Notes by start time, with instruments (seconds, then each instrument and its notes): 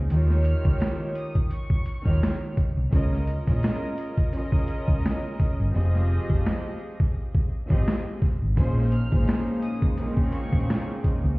0.10 fingered electric bass D#2, string section D#3 D#4 F4 G4 C#5, closed hi-hat
0.30 snare
0.45 violin section F6, closed hi-hat
0.65 fingered electric bass C#2, kick, closed hi-hat
0.80 cross-stick, snare, closed hi-hat
1.15 violin section D#6, closed hi-hat
1.35 kick, closed hi-hat
1.51 violin section C#6, closed hi-hat
1.70 kick
1.86 closed hi-hat
2.04 fingered electric bass D#2, string section D#3 D#4 F4 G4 C#5, violin section F6, kick
2.23 cross-stick, snare, closed hi-hat
2.57 kick, closed hi-hat
2.77 fingered electric bass C2
2.91 fingered electric bass C#2, string section C#3 C#4 F4 A#4 D#5, kick, closed hi-hat
3.13 snare
3.27 closed hi-hat
3.46 fingered electric bass A#1, string section C#3 C#4 F4 A#4 D#5, kick, closed hi-hat
3.63 cross-stick, snare, closed hi-hat
3.98 closed hi-hat
4.18 kick, closed hi-hat
4.33 string section C#3 C#4 F4 A#4 D#5, closed hi-hat
4.52 kick
4.68 closed hi-hat
4.88 fingered electric bass C#2, kick
5.06 cross-stick, snare, closed hi-hat
5.40 kick, closed hi-hat
5.60 fingered electric bass G1
5.73 fingered electric bass F1, string section F3 C4 G4 G#4 D#5
5.95 snare
6.30 fingered electric bass F1, kick
6.46 cross-stick, snare
7.00 kick
7.35 kick
7.68 fingered electric bass G#1, string section F3 C4 G4 G#4 D#5, kick
7.88 cross-stick, snare
8.22 kick, snare
8.42 fingered electric bass G#1
8.56 fingered electric bass A#1, string section A#2 F3 C#4 D#4 G#4 C5, analog synth pad C#3 G#3 A#3 D#4, kick, closed hi-hat
8.78 snare
8.92 violin section F6, closed hi-hat
9.11 fingered electric bass G#1, string section A#2 F3 C#4 D#4 G#4 C5, kick, closed hi-hat
9.28 cross-stick, snare, closed hi-hat
9.62 violin section D#6, closed hi-hat
9.82 kick, closed hi-hat
9.97 string section A#2 F3 C4 C#4 D#4 G#4, closed hi-hat
10.17 kick
10.32 violin section C#6, closed hi-hat
10.53 fingered electric bass A#1, kick
10.70 cross-stick, snare, closed hi-hat
11.04 kick, closed hi-hat
11.24 fingered electric bass C#2